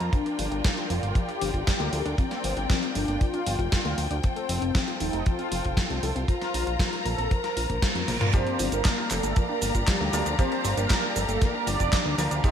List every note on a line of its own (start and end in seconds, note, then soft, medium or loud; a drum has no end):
0.00 0.10 F2 medium
0.00 0.10 F3 medium
0.00 0.10 A#3 medium
0.00 0.10 C4 medium
0.00 4.20 F4 medium
0.00 0.10 A#4 medium
0.00 4.20 A#4 medium
0.00 0.11 A#5 medium
0.00 closed hi-hat soft
0.13 0.24 F3 medium
0.13 0.93 D4 loud
0.13 4.20 D5 medium
0.13 6.25 G5 medium
0.13 kick loud
0.13 closed hi-hat medium
0.26 0.38 A#3 medium
0.26 closed hi-hat soft
0.39 0.49 G1 medium
0.39 0.50 F3 medium
0.39 open hi-hat loud
0.52 0.61 G1 medium
0.52 0.58 D4 medium
0.52 closed hi-hat soft
0.64 0.75 F3 loud
0.64 kick loud
0.64 snare loud
0.64 closed hi-hat medium
0.77 0.88 F4 medium
0.77 closed hi-hat soft
0.90 1.00 F1 medium
0.90 1.01 F3 medium
0.90 1.14 F4 medium
0.90 open hi-hat loud
1.03 1.13 G1 medium
1.03 1.14 A#3 medium
1.03 closed hi-hat soft
1.15 1.27 F3 medium
1.15 1.66 G4 loud
1.15 kick loud
1.15 closed hi-hat medium
1.28 1.41 D4 medium
1.28 closed hi-hat soft
1.41 1.51 G1 medium
1.41 1.54 F3 medium
1.41 open hi-hat loud
1.54 1.64 G1 medium
1.54 1.61 F4 medium
1.54 kick medium
1.54 closed hi-hat soft
1.67 1.78 F3 medium
1.67 2.03 G4 loud
1.67 kick loud
1.67 snare loud
1.67 closed hi-hat medium
1.80 1.90 D2 medium
1.80 1.91 A#3 medium
1.80 closed hi-hat soft
1.93 2.03 D2 medium
1.93 2.04 F3 medium
1.93 open hi-hat loud
2.05 2.15 D2 medium
2.05 2.18 D4 loud
2.05 closed hi-hat soft
2.18 2.29 F3 medium
2.18 2.91 C4 loud
2.18 kick loud
2.18 closed hi-hat medium
2.31 2.43 A#3 medium
2.31 snare soft
2.31 closed hi-hat soft
2.44 2.54 G1 loud
2.44 2.55 F3 medium
2.44 open hi-hat loud
2.57 2.67 G1 medium
2.57 2.63 D4 medium
2.57 closed hi-hat soft
2.70 2.81 F3 loud
2.70 kick loud
2.70 snare loud
2.70 closed hi-hat medium
2.83 2.93 F4 medium
2.83 closed hi-hat soft
2.95 3.05 G1 medium
2.95 3.06 F3 medium
2.95 3.22 D4 medium
2.95 open hi-hat loud
3.08 3.18 G1 medium
3.08 3.19 A#3 medium
3.08 closed hi-hat soft
3.21 3.32 F3 medium
3.21 3.71 F4 loud
3.21 kick loud
3.21 closed hi-hat medium
3.34 3.46 D4 medium
3.34 closed hi-hat soft
3.46 3.56 G1 medium
3.46 3.59 F3 medium
3.46 open hi-hat loud
3.59 3.69 F1 medium
3.59 3.66 F4 medium
3.59 kick medium
3.59 closed hi-hat soft
3.72 3.83 F3 medium
3.72 4.08 F4 loud
3.72 kick loud
3.72 snare loud
3.72 closed hi-hat medium
3.85 3.95 D2 medium
3.85 3.96 A#3 medium
3.85 closed hi-hat soft
3.98 4.08 D2 medium
3.98 4.09 F3 medium
3.98 open hi-hat loud
4.11 4.20 D2 medium
4.11 4.23 D4 loud
4.11 closed hi-hat soft
4.23 4.34 F3 medium
4.23 5.03 C4 loud
4.23 8.30 F4 medium
4.23 6.26 A4 medium
4.23 8.30 C5 medium
4.23 kick loud
4.23 closed hi-hat medium
4.36 4.49 A3 medium
4.36 closed hi-hat soft
4.49 4.59 F1 medium
4.49 4.60 F3 medium
4.49 open hi-hat loud
4.62 4.72 F1 medium
4.62 4.69 C4 medium
4.62 closed hi-hat soft
4.75 4.86 F3 loud
4.75 kick loud
4.75 snare loud
4.75 closed hi-hat medium
4.88 4.99 F4 medium
4.88 closed hi-hat soft
5.00 5.10 D#1 medium
5.00 5.11 F3 medium
5.00 5.24 D#4 loud
5.00 open hi-hat loud
5.13 5.23 F1 medium
5.13 5.24 A3 medium
5.13 closed hi-hat soft
5.26 5.37 F3 medium
5.26 6.05 F4 loud
5.26 kick loud
5.26 closed hi-hat medium
5.39 5.51 C4 medium
5.39 closed hi-hat soft
5.52 5.61 F1 loud
5.52 5.64 F3 medium
5.52 open hi-hat loud
5.65 5.75 F1 medium
5.65 5.71 F4 medium
5.65 kick medium
5.65 closed hi-hat soft
5.77 5.88 F3 loud
5.77 kick loud
5.77 snare loud
5.77 closed hi-hat medium
5.90 6.00 C2 medium
5.90 6.01 A3 medium
5.90 closed hi-hat soft
6.03 6.13 C2 medium
6.03 6.14 F3 medium
6.03 6.15 A4 loud
6.03 open hi-hat loud
6.16 6.26 C2 medium
6.16 6.28 C4 loud
6.16 closed hi-hat soft
6.28 6.39 F3 medium
6.28 7.02 F4 loud
6.28 8.32 A#4 medium
6.28 8.32 A#5 medium
6.28 kick loud
6.28 closed hi-hat medium
6.41 6.54 C4 medium
6.41 snare soft
6.41 closed hi-hat soft
6.54 6.64 A#1 medium
6.54 6.65 F3 medium
6.54 open hi-hat loud
6.67 6.77 A#1 medium
6.67 6.74 F4 medium
6.67 closed hi-hat soft
6.79 6.91 F3 loud
6.79 kick loud
6.79 snare loud
6.79 closed hi-hat medium
6.93 7.03 A#4 medium
6.93 closed hi-hat soft
7.05 7.15 A#1 medium
7.05 7.16 F3 medium
7.05 7.29 A4 loud
7.05 open hi-hat loud
7.18 7.28 A#1 medium
7.18 7.29 C4 medium
7.18 closed hi-hat soft
7.31 7.42 F3 medium
7.31 8.04 A#4 loud
7.31 kick loud
7.31 closed hi-hat medium
7.31 reverse cymbal medium
7.44 7.56 F4 medium
7.44 snare soft
7.44 closed hi-hat soft
7.57 7.67 A#1 medium
7.57 7.63 F4 medium
7.57 open hi-hat loud
7.70 7.79 A#1 medium
7.70 7.80 A#3 medium
7.70 kick medium
7.70 closed hi-hat soft
7.82 7.95 F4 medium
7.82 kick loud
7.82 snare loud
7.82 closed hi-hat medium
7.95 8.05 F2 medium
7.95 8.06 F3 medium
7.95 closed hi-hat soft
8.08 8.18 A#1 loud
8.08 8.19 A#4 loud
8.08 open hi-hat loud
8.08 high tom medium
8.21 8.31 A#2 medium
8.21 8.33 F4 loud
8.21 closed hi-hat soft
8.21 mid tom medium
8.34 10.10 F3 medium
8.34 8.45 F3 medium
8.34 10.10 A#3 medium
8.34 8.70 C4 medium
8.34 10.10 D4 medium
8.34 10.10 G4 loud
8.34 12.51 G4 medium
8.34 8.74 C5 loud
8.34 12.40 D5 medium
8.34 12.51 F5 medium
8.34 12.40 A#5 medium
8.34 kick loud
8.34 closed hi-hat medium
8.34 cabasa soft
8.47 8.59 A#3 medium
8.47 closed hi-hat soft
8.59 8.69 G1 loud
8.59 8.70 F3 medium
8.59 open hi-hat loud
8.59 cabasa medium
8.72 8.82 G1 medium
8.72 9.08 A#3 medium
8.72 8.79 D4 medium
8.72 9.08 A#4 loud
8.72 closed hi-hat medium
8.72 cabasa soft
8.85 8.96 F3 loud
8.85 kick loud
8.85 snare loud
8.85 clap medium
8.85 closed hi-hat medium
8.85 cabasa soft
8.98 9.09 F4 medium
9.11 9.20 F1 medium
9.11 9.22 F3 medium
9.11 9.35 A3 medium
9.11 9.37 A4 loud
9.11 clap medium
9.11 open hi-hat loud
9.11 cabasa medium
9.23 9.33 G1 medium
9.23 9.34 A#3 medium
9.23 closed hi-hat medium
9.23 cabasa soft
9.36 9.47 F3 medium
9.36 9.85 A#3 medium
9.36 9.89 A#4 loud
9.36 kick loud
9.36 closed hi-hat medium
9.36 cabasa soft
9.49 9.61 D4 medium
9.62 9.72 G1 loud
9.62 9.74 F3 medium
9.62 open hi-hat loud
9.62 cabasa medium
9.75 9.85 G1 medium
9.75 9.81 F4 medium
9.75 kick medium
9.75 closed hi-hat medium
9.75 cabasa soft
9.88 9.99 F3 loud
9.88 10.24 G3 medium
9.88 10.24 G4 loud
9.88 kick loud
9.88 snare loud
9.88 clap medium
9.88 closed hi-hat medium
9.88 cabasa soft
10.00 10.10 D2 medium
10.00 10.11 A#3 medium
10.13 10.23 D2 loud
10.13 10.24 F3 medium
10.13 10.36 F3 loud
10.13 10.36 A#3 medium
10.13 10.36 D4 medium
10.13 10.36 A#4 loud
10.13 open hi-hat loud
10.13 cabasa medium
10.26 10.36 D2 medium
10.26 10.38 D4 loud
10.26 closed hi-hat medium
10.26 cabasa soft
10.39 10.50 F3 medium
10.39 12.15 F3 loud
10.39 12.15 A#3 medium
10.39 10.75 C4 medium
10.39 12.15 D4 medium
10.39 12.15 G4 loud
10.39 10.79 C5 loud
10.39 kick loud
10.39 closed hi-hat medium
10.39 cabasa soft
10.52 10.64 A#3 medium
10.52 closed hi-hat soft
10.65 10.74 G1 medium
10.65 10.75 F3 medium
10.65 open hi-hat loud
10.65 cabasa medium
10.77 10.87 G1 medium
10.77 11.14 A#3 medium
10.77 10.84 D4 medium
10.77 11.17 A#4 loud
10.77 closed hi-hat medium
10.77 cabasa soft
10.90 11.01 F3 loud
10.90 kick loud
10.90 snare loud
10.90 clap medium
10.90 closed hi-hat medium
10.90 cabasa soft
11.03 11.14 F4 medium
11.16 11.26 G1 medium
11.16 11.27 F3 medium
11.16 11.40 A3 medium
11.16 11.42 A4 loud
11.16 open hi-hat loud
11.16 cabasa medium
11.28 11.38 G1 medium
11.28 11.39 A#3 medium
11.28 closed hi-hat medium
11.28 cabasa soft
11.41 11.52 F3 medium
11.41 11.66 A#3 medium
11.41 11.68 A#4 loud
11.41 kick loud
11.41 snare soft
11.41 closed hi-hat medium
11.41 cabasa soft
11.54 11.66 D4 medium
11.67 11.77 G1 loud
11.67 11.79 F3 medium
11.67 12.15 D4 medium
11.67 12.15 D5 loud
11.67 open hi-hat loud
11.67 cabasa medium
11.80 11.90 F1 medium
11.80 11.86 F4 medium
11.80 kick medium
11.80 closed hi-hat medium
11.80 cabasa soft
11.93 12.04 F3 loud
11.93 kick loud
11.93 snare loud
11.93 clap medium
11.93 closed hi-hat medium
11.93 cabasa soft
12.06 12.15 D2 medium
12.06 12.16 A#3 medium
12.18 12.28 D2 medium
12.18 12.29 F3 medium
12.18 12.41 F3 loud
12.18 12.41 A#3 medium
12.18 12.41 D4 medium
12.18 12.41 A#4 loud
12.18 open hi-hat loud
12.18 cabasa medium
12.31 12.41 D2 medium
12.31 12.43 D4 loud
12.31 closed hi-hat medium
12.31 cabasa soft
12.44 12.51 F3 medium
12.44 12.51 A3 medium
12.44 12.51 C4 medium
12.44 12.51 D#4 loud
12.44 12.51 G4 loud
12.44 12.51 C5 medium
12.44 12.51 D#5 loud
12.44 12.51 A5 loud
12.44 kick loud
12.44 closed hi-hat medium
12.44 cabasa soft